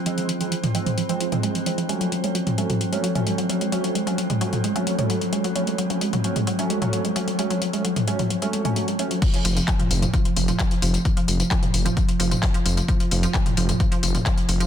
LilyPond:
<<
  \new Staff \with { instrumentName = "Analog polysynth" } { \time 4/4 \key ges \lydian \tempo 4 = 131 <f aes c'>8 r16 <f aes c'>16 r8 <f aes c'>16 r8 <f aes c'>8 <f aes c'>8 r16 <f aes c'>16 r16 | <ges a des'>8 r16 <ges a des'>16 r8 <ges a des'>16 r8 <ges a des'>8 <ges a des'>8 r16 <ges a des'>16 r16 | <ges a des'>8 r16 <ges a des'>16 r8 <ges a des'>16 r8 <ges a des'>8 <ges a des'>8 r16 <ges a des'>16 r16 | <ges a des'>8 r16 <ges a des'>16 r8 <ges a des'>16 r8 <ges a des'>8 <ges a des'>8 r16 <ges a des'>16 r16 |
<ges a des'>8 r16 <ges a des'>16 r8 <ges a des'>16 r8 <ges a des'>8 <ges a des'>8 r16 <ges a des'>16 r16 | r1 | r1 | r1 | }
  \new Staff \with { instrumentName = "Synth drone" } { \clef bass \time 4/4 \key ges \lydian <f c'>1~ | <f c'>1~ | <f c'>1~ | <f c'>1~ |
<f c'>1 | r1 | r1 | r1 | }
  \new Staff \with { instrumentName = "Synth arpeggio sound" } { \clef bass \time 4/4 \key ges \lydian f16 f16 f16 f16 f16 f16 f16 f16 f16 f16 f'16 f16 aes16 f16 f16 f16 | aes16 ges16 ges16 aes16 ges16 ges16 aes16 ges16 ges16 aes16 ges16 ges16 aes16 ges16 ges16 aes16 | ges16 ges16 aes16 ges16 ges16 aes16 ges16 ges16 aes16 ges16 ges16 aes16 ges16 ges16 aes16 ges16 | ges16 aes16 ges16 ges16 aes16 ges16 ges16 aes16 ges16 ges16 aes16 ges16 ges16 aes16 ges16 ges16 |
aes16 ges16 ges16 aes16 ges16 ges16 aes16 ges16 ges16 aes16 aes16 a16 a16 aes16 des'16 ges16 | f16 f16 f16 f16 f16 f16 f16 f16 f16 f16 f16 f16 r16 f16 f16 f16 | f16 f16 f16 f16 f16 f16 f16 f16 f16 f16 f16 f16 f16 f16 f16 f16 | f16 f16 f16 f16 f16 f16 f16 f16 f16 f16 f16 f16 f16 f16 f16 f16 | }
  \new Staff \with { instrumentName = "Detuned saw bass" } { \clef bass \time 4/4 \key ges \lydian r1 | r1 | r1 | r1 |
r1 | r8 f,,8 r8 f,,8 r8 f,,8 r8 f,,8 | r8 f,,8 r8 f,,8 r8 f,,8 r8 f,,8 | r8 f,,8 r8 f,,8 r8 f,,8 r8 f,,8 | }
  \new DrumStaff \with { instrumentName = "Drums" } \drummode { \time 4/4 hh16 hh16 hh16 hh16 hh16 <hh toml>16 hh16 <hh toml>16 hh16 hh16 hh16 <hh toml>16 hh16 hh16 hh16 hh16 | hh16 hh16 hh16 hh16 hh16 <hh toml>16 hh16 <hh toml>16 hh16 hh16 hh16 <hh toml>16 hh16 hh16 hh16 hh16 | hh16 hh16 hh16 hh16 hh16 <hh toml>16 hh16 <hh toml>16 hh16 hh16 hh16 <hh toml>16 hh16 hh16 hh16 hh16 | hh16 hh16 hh16 hh16 hh16 <hh toml>16 hh16 <hh toml>16 hh16 hh16 hh16 <hh toml>16 hh16 hh16 hh16 hh16 |
hh16 hh16 hh16 hh16 hh16 <hh toml>16 hh16 <hh toml>16 hh16 hh16 hh16 <hh toml>16 hh16 hh16 hh16 hh16 | <cymc hh bd tamb>16 hh16 <hho tamb>16 <hh tamb>16 <hc hh bd tamb>16 <hh toml>16 <hho tamb>16 <hh tamb toml>16 <hh bd tamb>16 hh16 <hho tamb>16 <hh tamb toml>16 <hc hh bd tamb>16 hh16 <hho tamb>16 <hh tamb>16 | <hh bd tamb>16 hh16 <hho tamb>16 <hh tamb>16 <hc hh bd tamb>16 <hh toml>16 <hho tamb>16 <hh tamb toml>16 <hh bd tamb>16 hh16 <hho tamb>16 <hh tamb toml>16 <hc hho bd>16 hh16 <hho tamb>16 <hh tamb>16 | <hh bd tamb>16 hh16 <hho tamb>16 <hh tamb>16 <hc hh bd tamb>16 <hh toml>16 <hho tamb>16 <hh tamb toml>16 <hh bd tamb>16 hh16 <hho tamb>16 <hh tamb toml>16 <hc hh bd tamb>16 hh16 <hho tamb>16 <hh tamb>16 | }
>>